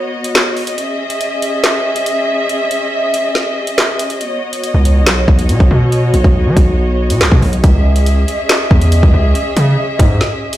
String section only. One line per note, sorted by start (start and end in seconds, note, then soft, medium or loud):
0.00 0.75 B3 medium
0.00 0.74 F#4 medium
0.00 0.75 C#5 medium
0.00 7.60 D#5 medium
0.78 4.17 C#4 medium
0.78 4.17 G#4 medium
0.78 4.17 E5 medium
4.21 7.60 B3 medium
4.21 7.60 F#4 medium
4.21 7.60 C#5 medium
7.64 10.57 C#4 medium
7.64 10.57 G#4 medium
7.64 10.57 D#5 medium
7.64 10.57 E5 medium